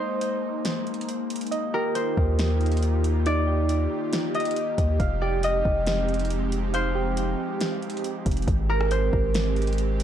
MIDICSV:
0, 0, Header, 1, 6, 480
1, 0, Start_track
1, 0, Tempo, 434783
1, 1678, Time_signature, 4, 2, 24, 8
1, 11075, End_track
2, 0, Start_track
2, 0, Title_t, "Harp"
2, 0, Program_c, 0, 46
2, 0, Note_on_c, 0, 72, 103
2, 0, Note_on_c, 0, 75, 81
2, 293, Note_off_c, 0, 75, 0
2, 1920, Note_on_c, 0, 70, 89
2, 1940, Note_off_c, 0, 72, 0
2, 2154, Note_on_c, 0, 72, 82
2, 3604, Note_on_c, 0, 74, 111
2, 4261, Note_off_c, 0, 70, 0
2, 4339, Note_off_c, 0, 72, 0
2, 4800, Note_on_c, 0, 75, 73
2, 4867, Note_off_c, 0, 74, 0
2, 5758, Note_on_c, 0, 74, 69
2, 5824, Note_off_c, 0, 75, 0
2, 6006, Note_on_c, 0, 75, 85
2, 6072, Note_off_c, 0, 74, 0
2, 7444, Note_on_c, 0, 72, 106
2, 7975, Note_off_c, 0, 75, 0
2, 9599, Note_on_c, 0, 70, 93
2, 9629, Note_off_c, 0, 72, 0
2, 9841, Note_on_c, 0, 72, 83
2, 11075, Note_off_c, 0, 70, 0
2, 11075, Note_off_c, 0, 72, 0
2, 11075, End_track
3, 0, Start_track
3, 0, Title_t, "Synth keys"
3, 0, Program_c, 1, 88
3, 0, Note_on_c, 1, 72, 94
3, 0, Note_on_c, 1, 75, 104
3, 1198, Note_off_c, 1, 75, 0
3, 1436, Note_off_c, 1, 72, 0
3, 1672, Note_on_c, 1, 75, 106
3, 1922, Note_on_c, 1, 67, 96
3, 3115, Note_off_c, 1, 75, 0
3, 3360, Note_off_c, 1, 67, 0
3, 3603, Note_on_c, 1, 63, 109
3, 3834, Note_on_c, 1, 67, 83
3, 5041, Note_off_c, 1, 63, 0
3, 5276, Note_off_c, 1, 67, 0
3, 5516, Note_on_c, 1, 77, 100
3, 5761, Note_on_c, 1, 67, 95
3, 6957, Note_off_c, 1, 77, 0
3, 7200, Note_off_c, 1, 67, 0
3, 7437, Note_on_c, 1, 77, 104
3, 7675, Note_on_c, 1, 67, 95
3, 8877, Note_off_c, 1, 77, 0
3, 9116, Note_off_c, 1, 67, 0
3, 11075, End_track
4, 0, Start_track
4, 0, Title_t, "Analog synth pad"
4, 0, Program_c, 2, 89
4, 0, Note_on_c, 2, 56, 82
4, 0, Note_on_c, 2, 58, 74
4, 0, Note_on_c, 2, 63, 94
4, 1634, Note_off_c, 2, 56, 0
4, 1640, Note_off_c, 2, 63, 0
4, 1678, Note_on_c, 2, 51, 80
4, 1678, Note_on_c, 2, 67, 87
4, 1679, Note_on_c, 2, 63, 75
4, 1679, Note_on_c, 2, 65, 74
4, 5474, Note_off_c, 2, 58, 0
4, 5480, Note_off_c, 2, 51, 0
4, 5480, Note_off_c, 2, 63, 0
4, 5480, Note_off_c, 2, 65, 0
4, 5519, Note_on_c, 2, 53, 81
4, 5519, Note_on_c, 2, 56, 90
4, 5519, Note_on_c, 2, 60, 78
4, 5519, Note_on_c, 2, 63, 76
4, 9314, Note_off_c, 2, 67, 0
4, 9320, Note_off_c, 2, 53, 0
4, 9320, Note_off_c, 2, 56, 0
4, 9320, Note_off_c, 2, 60, 0
4, 9320, Note_off_c, 2, 63, 0
4, 9359, Note_on_c, 2, 56, 84
4, 9359, Note_on_c, 2, 60, 78
4, 9359, Note_on_c, 2, 67, 92
4, 11075, Note_off_c, 2, 56, 0
4, 11075, Note_off_c, 2, 60, 0
4, 11075, Note_off_c, 2, 67, 0
4, 11075, End_track
5, 0, Start_track
5, 0, Title_t, "808-style bass"
5, 0, Program_c, 3, 38
5, 2401, Note_on_c, 3, 39, 104
5, 4275, Note_off_c, 3, 39, 0
5, 5279, Note_on_c, 3, 39, 104
5, 5509, Note_off_c, 3, 39, 0
5, 5518, Note_on_c, 3, 29, 108
5, 6209, Note_off_c, 3, 29, 0
5, 6240, Note_on_c, 3, 29, 102
5, 8115, Note_off_c, 3, 29, 0
5, 9120, Note_on_c, 3, 29, 100
5, 9349, Note_off_c, 3, 29, 0
5, 9358, Note_on_c, 3, 32, 114
5, 10049, Note_off_c, 3, 32, 0
5, 10080, Note_on_c, 3, 32, 106
5, 11075, Note_off_c, 3, 32, 0
5, 11075, End_track
6, 0, Start_track
6, 0, Title_t, "Drums"
6, 235, Note_on_c, 9, 42, 80
6, 346, Note_off_c, 9, 42, 0
6, 716, Note_on_c, 9, 42, 76
6, 723, Note_on_c, 9, 38, 102
6, 826, Note_off_c, 9, 42, 0
6, 834, Note_off_c, 9, 38, 0
6, 958, Note_on_c, 9, 42, 35
6, 1037, Note_off_c, 9, 42, 0
6, 1037, Note_on_c, 9, 42, 46
6, 1117, Note_off_c, 9, 42, 0
6, 1117, Note_on_c, 9, 42, 57
6, 1199, Note_off_c, 9, 42, 0
6, 1199, Note_on_c, 9, 42, 72
6, 1309, Note_off_c, 9, 42, 0
6, 1438, Note_on_c, 9, 42, 82
6, 1498, Note_off_c, 9, 42, 0
6, 1498, Note_on_c, 9, 42, 67
6, 1558, Note_off_c, 9, 42, 0
6, 1558, Note_on_c, 9, 42, 59
6, 1618, Note_off_c, 9, 42, 0
6, 1618, Note_on_c, 9, 42, 48
6, 1679, Note_off_c, 9, 42, 0
6, 1679, Note_on_c, 9, 42, 80
6, 1789, Note_off_c, 9, 42, 0
6, 2156, Note_on_c, 9, 42, 83
6, 2266, Note_off_c, 9, 42, 0
6, 2401, Note_on_c, 9, 36, 93
6, 2511, Note_off_c, 9, 36, 0
6, 2636, Note_on_c, 9, 42, 74
6, 2643, Note_on_c, 9, 38, 105
6, 2746, Note_off_c, 9, 42, 0
6, 2754, Note_off_c, 9, 38, 0
6, 2878, Note_on_c, 9, 42, 36
6, 2938, Note_off_c, 9, 42, 0
6, 2938, Note_on_c, 9, 42, 45
6, 2998, Note_off_c, 9, 42, 0
6, 2998, Note_on_c, 9, 42, 51
6, 3057, Note_off_c, 9, 42, 0
6, 3057, Note_on_c, 9, 42, 57
6, 3119, Note_off_c, 9, 42, 0
6, 3119, Note_on_c, 9, 42, 70
6, 3229, Note_off_c, 9, 42, 0
6, 3359, Note_on_c, 9, 42, 78
6, 3470, Note_off_c, 9, 42, 0
6, 3598, Note_on_c, 9, 42, 78
6, 3708, Note_off_c, 9, 42, 0
6, 4075, Note_on_c, 9, 42, 78
6, 4186, Note_off_c, 9, 42, 0
6, 4556, Note_on_c, 9, 42, 78
6, 4563, Note_on_c, 9, 38, 101
6, 4666, Note_off_c, 9, 42, 0
6, 4674, Note_off_c, 9, 38, 0
6, 4798, Note_on_c, 9, 42, 37
6, 4857, Note_off_c, 9, 42, 0
6, 4857, Note_on_c, 9, 42, 45
6, 4917, Note_off_c, 9, 42, 0
6, 4917, Note_on_c, 9, 42, 51
6, 4978, Note_off_c, 9, 42, 0
6, 4978, Note_on_c, 9, 42, 55
6, 5039, Note_off_c, 9, 42, 0
6, 5039, Note_on_c, 9, 42, 70
6, 5149, Note_off_c, 9, 42, 0
6, 5279, Note_on_c, 9, 36, 88
6, 5279, Note_on_c, 9, 42, 82
6, 5389, Note_off_c, 9, 42, 0
6, 5390, Note_off_c, 9, 36, 0
6, 5518, Note_on_c, 9, 36, 123
6, 5518, Note_on_c, 9, 42, 78
6, 5628, Note_off_c, 9, 36, 0
6, 5628, Note_off_c, 9, 42, 0
6, 5996, Note_on_c, 9, 42, 84
6, 6106, Note_off_c, 9, 42, 0
6, 6240, Note_on_c, 9, 36, 94
6, 6351, Note_off_c, 9, 36, 0
6, 6476, Note_on_c, 9, 42, 77
6, 6483, Note_on_c, 9, 38, 103
6, 6586, Note_off_c, 9, 42, 0
6, 6594, Note_off_c, 9, 38, 0
6, 6718, Note_on_c, 9, 42, 36
6, 6778, Note_off_c, 9, 42, 0
6, 6778, Note_on_c, 9, 42, 45
6, 6839, Note_off_c, 9, 42, 0
6, 6839, Note_on_c, 9, 42, 50
6, 6899, Note_off_c, 9, 42, 0
6, 6899, Note_on_c, 9, 42, 58
6, 6960, Note_off_c, 9, 42, 0
6, 6960, Note_on_c, 9, 42, 72
6, 7070, Note_off_c, 9, 42, 0
6, 7200, Note_on_c, 9, 42, 76
6, 7310, Note_off_c, 9, 42, 0
6, 7439, Note_on_c, 9, 42, 80
6, 7549, Note_off_c, 9, 42, 0
6, 7916, Note_on_c, 9, 42, 85
6, 8027, Note_off_c, 9, 42, 0
6, 8396, Note_on_c, 9, 42, 74
6, 8404, Note_on_c, 9, 38, 97
6, 8507, Note_off_c, 9, 42, 0
6, 8515, Note_off_c, 9, 38, 0
6, 8639, Note_on_c, 9, 42, 36
6, 8718, Note_off_c, 9, 42, 0
6, 8718, Note_on_c, 9, 42, 46
6, 8798, Note_off_c, 9, 42, 0
6, 8798, Note_on_c, 9, 42, 56
6, 8880, Note_off_c, 9, 42, 0
6, 8880, Note_on_c, 9, 42, 70
6, 8990, Note_off_c, 9, 42, 0
6, 9118, Note_on_c, 9, 42, 81
6, 9119, Note_on_c, 9, 36, 95
6, 9179, Note_off_c, 9, 42, 0
6, 9179, Note_on_c, 9, 42, 70
6, 9230, Note_off_c, 9, 36, 0
6, 9239, Note_off_c, 9, 42, 0
6, 9239, Note_on_c, 9, 42, 60
6, 9299, Note_off_c, 9, 42, 0
6, 9299, Note_on_c, 9, 42, 46
6, 9358, Note_off_c, 9, 42, 0
6, 9358, Note_on_c, 9, 36, 127
6, 9358, Note_on_c, 9, 42, 80
6, 9468, Note_off_c, 9, 36, 0
6, 9469, Note_off_c, 9, 42, 0
6, 9722, Note_on_c, 9, 37, 103
6, 9832, Note_off_c, 9, 37, 0
6, 9836, Note_on_c, 9, 42, 80
6, 9946, Note_off_c, 9, 42, 0
6, 10080, Note_on_c, 9, 36, 95
6, 10191, Note_off_c, 9, 36, 0
6, 10316, Note_on_c, 9, 42, 81
6, 10324, Note_on_c, 9, 38, 108
6, 10427, Note_off_c, 9, 42, 0
6, 10434, Note_off_c, 9, 38, 0
6, 10559, Note_on_c, 9, 42, 36
6, 10619, Note_off_c, 9, 42, 0
6, 10619, Note_on_c, 9, 42, 43
6, 10679, Note_off_c, 9, 42, 0
6, 10679, Note_on_c, 9, 42, 50
6, 10739, Note_off_c, 9, 42, 0
6, 10739, Note_on_c, 9, 42, 60
6, 10799, Note_off_c, 9, 42, 0
6, 10799, Note_on_c, 9, 42, 72
6, 10910, Note_off_c, 9, 42, 0
6, 11039, Note_on_c, 9, 42, 79
6, 11075, Note_off_c, 9, 42, 0
6, 11075, End_track
0, 0, End_of_file